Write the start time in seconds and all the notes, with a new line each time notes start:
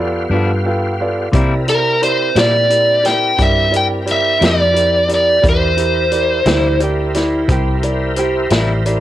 Already playing: F2 B3 F4 G4 F5
0.00 A4 B4 D5
0.30 G2 F3 B3 D4 F4 A4 B4 F5
0.66 F4 A4 B4 F5 G5
1.00 F4 A4 B4 D5 F5
1.32 C3 G3 A#3 C4 E4 G4 A#4 D5 E5, kick, closed hi-hat
1.67 E4 G4 A#4 D5, closed hi-hat
2.02 E4 G4 A#4 C5 D5, closed hi-hat
2.35 A#2 C3 G3 A#3 E4 G4 A#4 D5, snare, closed hi-hat
2.69 E4 G4 A#4 D5, closed hi-hat
3.04 E4 G4 A#4 D5 G5, snare, closed hi-hat
3.38 G2 E4 G4 A#4 D5, kick, closed hi-hat
3.42 E5
3.71 E4 G4 A#4 D5, closed hi-hat
3.77 G5
4.06 E4 G4 A#4 D5, closed hi-hat
4.11 E5
4.39 F2 C3 G3 A#3 E4 G4 A#4 D5, closed hi-hat
4.43 D5, snare
4.73 E4 G4 A#4 D5, closed hi-hat
5.08 E4 G4 A#4 D5, closed hi-hat
5.14 D5
5.42 E2 E4 G4 A#4 C5 D5, kick, closed hi-hat
5.46 C5 E5
5.77 E4 G4 A#4 C5, closed hi-hat
6.12 E4 G4 A#4 D5, closed hi-hat
6.46 D2 C3 G3 A#3 E4 G4 A#4 D5, snare, closed hi-hat
6.79 E4 G4 A#4 D5, closed hi-hat
6.84 G4
7.14 E4 G4 A#4 D5, snare, closed hi-hat
7.48 C2 E4 G4 A#4 C5, kick, closed hi-hat
7.83 E4 G4 A#4 D5, closed hi-hat
8.16 E4 G4 A#4 C5, closed hi-hat
8.50 A1 C3 G3 A#3 E4 G4 A#4 D5, snare, closed hi-hat
8.86 E4 G4 A#4 D5, closed hi-hat